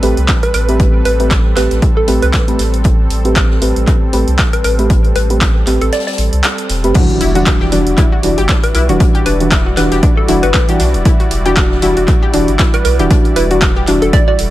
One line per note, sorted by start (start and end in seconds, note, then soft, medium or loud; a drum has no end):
0.00 0.14 A1 medium
0.00 6.91 G3 medium
0.00 0.18 A3 medium
0.00 6.91 C4 medium
0.00 0.18 C4 medium
0.00 0.18 G4 medium
0.00 6.91 A4 medium
0.00 2.81 B4 medium
0.00 0.18 B4 loud
0.00 closed hi-hat medium
0.00 open hi-hat loud
0.17 0.26 C2 medium
0.17 closed hi-hat soft
0.27 kick loud
0.27 snare loud
0.27 clap loud
0.27 closed hi-hat medium
0.43 0.52 B4 medium
0.43 closed hi-hat medium
0.54 1.01 A1 medium
0.54 0.94 B4 medium
0.54 closed hi-hat medium
0.54 open hi-hat loud
0.68 1.16 A3 medium
0.68 1.16 C4 medium
0.68 1.17 G4 medium
0.68 1.17 B4 loud
0.68 closed hi-hat medium
0.80 kick loud
0.80 closed hi-hat medium
1.05 1.52 A1 loud
1.05 1.54 B4 medium
1.05 closed hi-hat medium
1.05 open hi-hat medium
1.20 1.32 A3 medium
1.20 1.32 C4 medium
1.20 1.32 G4 medium
1.20 1.32 B4 medium
1.20 closed hi-hat medium
1.30 kick loud
1.30 snare loud
1.30 clap loud
1.30 closed hi-hat medium
1.56 1.68 A1 loud
1.56 1.79 A3 medium
1.56 1.79 C4 medium
1.56 1.79 G4 medium
1.56 1.79 B4 loud
1.56 1.79 B4 medium
1.56 snare loud
1.56 clap soft
1.56 closed hi-hat medium
1.56 open hi-hat loud
1.71 1.80 A1 medium
1.71 snare soft
1.71 closed hi-hat medium
1.82 kick loud
1.82 closed hi-hat medium
1.97 2.18 A4 medium
2.08 2.19 A1 medium
2.08 2.23 A3 medium
2.08 2.23 C4 medium
2.08 2.23 G4 medium
2.08 2.23 B4 loud
2.08 closed hi-hat medium
2.08 open hi-hat medium
2.22 2.31 C2 medium
2.22 2.30 B4 medium
2.22 closed hi-hat medium
2.33 2.43 B4 medium
2.33 kick medium
2.33 snare loud
2.33 clap loud
2.33 closed hi-hat medium
2.48 2.60 A3 medium
2.48 2.60 C4 medium
2.48 2.60 G4 medium
2.48 2.60 B4 loud
2.48 closed hi-hat medium
2.59 3.06 A1 medium
2.59 snare soft
2.59 closed hi-hat medium
2.59 open hi-hat loud
2.74 closed hi-hat medium
2.84 kick loud
2.84 closed hi-hat medium
3.10 3.57 A1 medium
3.10 closed hi-hat medium
3.10 open hi-hat medium
3.25 3.59 A3 medium
3.25 3.59 C4 medium
3.25 3.59 G4 medium
3.25 3.59 B4 medium
3.25 closed hi-hat medium
3.36 kick loud
3.36 snare loud
3.36 clap loud
3.36 closed hi-hat medium
3.51 snare soft
3.61 3.73 A1 loud
3.61 4.10 A3 medium
3.61 4.10 C4 medium
3.61 4.10 G4 medium
3.61 4.11 B4 medium
3.61 closed hi-hat medium
3.61 open hi-hat loud
3.76 3.85 A1 medium
3.76 closed hi-hat medium
3.87 kick loud
3.87 clap soft
3.87 closed hi-hat medium
4.13 4.24 A1 medium
4.13 4.28 A3 medium
4.13 4.28 C4 medium
4.13 4.28 G4 medium
4.13 4.29 B4 loud
4.13 closed hi-hat medium
4.13 open hi-hat medium
4.28 4.36 C2 medium
4.28 closed hi-hat medium
4.39 kick loud
4.39 snare loud
4.39 clap loud
4.39 closed hi-hat medium
4.53 4.62 B4 medium
4.53 closed hi-hat medium
4.64 5.11 A1 medium
4.64 5.05 B4 medium
4.64 closed hi-hat medium
4.64 open hi-hat loud
4.79 5.27 A3 medium
4.79 5.27 C4 medium
4.79 5.27 G4 medium
4.79 5.27 B4 loud
4.79 closed hi-hat medium
4.90 kick loud
4.90 closed hi-hat medium
5.05 closed hi-hat soft
5.16 5.63 A1 loud
5.16 5.65 B4 medium
5.16 closed hi-hat medium
5.16 open hi-hat loud
5.30 5.42 A3 medium
5.30 5.42 C4 medium
5.30 5.42 G4 medium
5.30 5.42 B4 medium
5.30 closed hi-hat medium
5.41 kick loud
5.41 snare loud
5.41 clap loud
5.41 closed hi-hat medium
5.67 5.78 A1 loud
5.67 5.89 A3 medium
5.67 5.89 C4 medium
5.67 5.89 G4 medium
5.67 5.90 B4 medium
5.67 clap soft
5.67 open hi-hat loud
5.81 5.90 A1 medium
5.81 5.90 A4 medium
5.81 closed hi-hat medium
5.92 6.02 D5 medium
5.92 snare medium
5.92 closed hi-hat medium
6.00 snare medium
6.00 closed hi-hat medium
6.06 6.14 D5 medium
6.06 snare medium
6.06 closed hi-hat medium
6.13 snare medium
6.13 closed hi-hat medium
6.18 6.29 A1 medium
6.18 closed hi-hat medium
6.18 open hi-hat medium
6.33 6.41 C2 medium
6.33 closed hi-hat medium
6.44 snare loud
6.44 clap loud
6.44 closed hi-hat medium
6.58 closed hi-hat medium
6.69 6.85 E1 medium
6.69 snare soft
6.69 closed hi-hat medium
6.69 open hi-hat medium
6.84 6.92 G1 medium
6.84 6.94 A3 medium
6.84 6.94 C4 medium
6.84 6.94 G4 medium
6.84 6.94 B4 loud
6.84 closed hi-hat medium
6.94 7.29 E3 loud
6.94 7.29 G3 medium
6.94 14.50 G3 medium
6.94 7.00 D4 medium
6.94 7.30 D4 medium
6.94 14.50 E4 medium
6.94 14.50 F#4 medium
6.94 7.30 F#4 loud
6.94 14.50 D5 medium
6.94 kick loud
6.94 closed hi-hat medium
6.94 crash loud
6.94 impact medium
7.10 closed hi-hat soft
7.20 7.68 E1 loud
7.20 7.28 E4 loud
7.20 closed hi-hat medium
7.20 open hi-hat loud
7.35 7.69 E3 medium
7.35 7.69 G3 medium
7.35 7.69 D4 medium
7.35 7.39 F#4 medium
7.35 7.70 F#4 medium
7.35 closed hi-hat medium
7.46 kick loud
7.46 snare loud
7.46 clap loud
7.46 closed hi-hat medium
7.61 7.65 G4 loud
7.61 snare soft
7.72 7.83 E1 loud
7.72 8.21 E3 medium
7.72 8.21 G3 medium
7.72 7.77 D4 medium
7.72 8.21 D4 medium
7.72 8.21 F#4 medium
7.72 closed hi-hat medium
7.72 open hi-hat medium
7.86 7.95 E1 medium
7.86 closed hi-hat medium
7.97 8.05 E4 loud
7.97 kick loud
7.97 clap soft
7.97 closed hi-hat medium
8.12 8.16 F#4 medium
8.23 8.34 E1 medium
8.23 8.38 E3 medium
8.23 8.39 G3 medium
8.23 8.39 D4 medium
8.23 8.39 F#4 loud
8.23 closed hi-hat medium
8.23 open hi-hat loud
8.38 8.46 G1 medium
8.38 8.42 G4 loud
8.38 closed hi-hat medium
8.49 8.54 D4 medium
8.49 kick loud
8.49 snare loud
8.49 clap loud
8.49 closed hi-hat medium
8.64 8.72 B4 medium
8.64 closed hi-hat medium
8.75 8.91 B1 medium
8.75 8.82 E4 loud
8.75 9.15 B4 medium
8.75 closed hi-hat medium
8.75 open hi-hat medium
8.89 8.98 D1 medium
8.89 9.37 E3 medium
8.89 9.37 G3 medium
8.89 9.37 D4 medium
8.89 8.93 F#4 medium
8.89 9.37 F#4 loud
8.89 closed hi-hat medium
9.00 kick loud
9.00 closed hi-hat medium
9.15 9.19 G4 loud
9.15 closed hi-hat soft
9.26 9.73 E1 loud
9.26 9.31 D4 medium
9.26 9.75 B4 medium
9.26 closed hi-hat medium
9.26 open hi-hat loud
9.40 9.52 E3 medium
9.40 9.53 G3 medium
9.40 9.53 D4 medium
9.40 9.53 F#4 medium
9.40 closed hi-hat medium
9.52 9.59 E4 loud
9.52 kick loud
9.52 snare loud
9.52 clap loud
9.52 closed hi-hat medium
9.66 9.70 F#4 medium
9.77 9.88 E1 loud
9.77 9.99 E3 medium
9.77 10.00 G3 medium
9.77 10.00 D4 medium
9.77 10.00 F#4 loud
9.77 9.99 B4 medium
9.77 snare loud
9.77 clap soft
9.77 closed hi-hat medium
9.77 open hi-hat loud
9.92 10.00 E1 medium
9.92 9.96 G4 medium
9.92 snare soft
9.92 closed hi-hat medium
10.03 10.08 D4 medium
10.03 kick loud
10.03 closed hi-hat medium
10.17 10.39 A4 medium
10.28 10.39 E1 medium
10.28 10.44 E3 loud
10.28 10.44 G3 medium
10.28 10.44 D4 medium
10.28 10.36 E4 loud
10.28 10.44 F#4 loud
10.28 closed hi-hat medium
10.28 open hi-hat loud
10.43 10.51 G1 medium
10.43 10.47 F#4 medium
10.43 10.50 B4 medium
10.43 closed hi-hat medium
10.54 10.63 B4 medium
10.54 kick loud
10.54 snare loud
10.54 clap loud
10.54 closed hi-hat medium
10.68 10.81 E3 loud
10.68 10.81 G3 medium
10.68 10.81 D4 medium
10.68 10.81 F#4 loud
10.68 10.73 G4 loud
10.68 closed hi-hat medium
10.79 10.96 B1 medium
10.79 10.85 D4 medium
10.79 snare soft
10.79 closed hi-hat medium
10.79 open hi-hat medium
10.94 11.03 D1 loud
10.94 closed hi-hat medium
11.05 11.13 E4 loud
11.05 kick loud
11.05 closed hi-hat medium
11.20 11.24 F#4 medium
11.20 closed hi-hat soft
11.31 11.78 E1 medium
11.31 closed hi-hat medium
11.31 open hi-hat loud
11.45 11.80 E3 medium
11.45 11.80 G3 medium
11.45 11.80 D4 medium
11.45 11.80 F#4 medium
11.45 11.50 G4 loud
11.45 closed hi-hat medium
11.56 11.62 D4 medium
11.56 kick loud
11.56 snare loud
11.56 clap loud
11.56 closed hi-hat medium
11.71 snare medium
11.82 11.93 E1 loud
11.82 12.31 E3 medium
11.82 12.31 G3 medium
11.82 12.31 D4 medium
11.82 11.90 E4 loud
11.82 12.31 F#4 medium
11.82 closed hi-hat medium
11.82 open hi-hat loud
11.97 12.05 E1 medium
11.97 12.01 F#4 medium
11.97 closed hi-hat medium
12.08 kick loud
12.08 clap soft
12.08 closed hi-hat medium
12.23 12.26 G4 loud
12.33 12.45 E1 medium
12.33 12.49 E3 medium
12.33 12.49 G3 medium
12.33 12.39 D4 medium
12.33 12.49 D4 medium
12.33 12.49 F#4 loud
12.33 closed hi-hat medium
12.33 open hi-hat loud
12.48 12.57 G1 medium
12.48 closed hi-hat medium
12.59 12.67 E4 loud
12.59 kick loud
12.59 snare loud
12.59 clap loud
12.59 closed hi-hat medium
12.59 closed hi-hat loud
12.74 12.78 F#4 medium
12.74 12.83 B4 loud
12.74 closed hi-hat medium
12.85 13.01 B1 medium
12.85 13.25 B4 medium
12.85 closed hi-hat medium
12.85 open hi-hat medium
12.99 13.08 D1 medium
12.99 13.47 E3 medium
12.99 13.47 G3 medium
12.99 13.47 D4 medium
12.99 13.47 F#4 loud
12.99 13.03 G4 loud
12.99 closed hi-hat medium
13.11 13.16 D4 medium
13.11 kick loud
13.11 closed hi-hat medium
13.25 closed hi-hat soft
13.36 13.83 E1 medium
13.36 13.44 E4 loud
13.36 13.85 B4 medium
13.36 closed hi-hat medium
13.36 open hi-hat loud
13.50 13.63 E3 medium
13.50 13.63 G3 medium
13.50 13.63 D4 medium
13.50 13.55 F#4 medium
13.50 13.63 F#4 loud
13.50 closed hi-hat medium
13.61 kick loud
13.61 snare loud
13.61 clap loud
13.61 closed hi-hat medium
13.76 13.80 G4 loud
13.87 13.98 E1 loud
13.87 14.10 E3 medium
13.87 14.10 G3 medium
13.87 13.93 D4 medium
13.87 14.10 D4 medium
13.87 14.10 F#4 medium
13.87 clap soft
13.87 closed hi-hat medium
13.87 open hi-hat medium
14.02 14.10 E1 medium
14.02 14.11 A4 medium
14.02 closed hi-hat medium
14.13 14.21 E4 loud
14.13 14.22 D5 medium
14.13 kick loud
14.13 closed hi-hat medium
14.28 14.32 F#4 medium
14.28 14.35 D5 medium
14.39 14.50 E1 medium
14.39 closed hi-hat medium
14.39 open hi-hat loud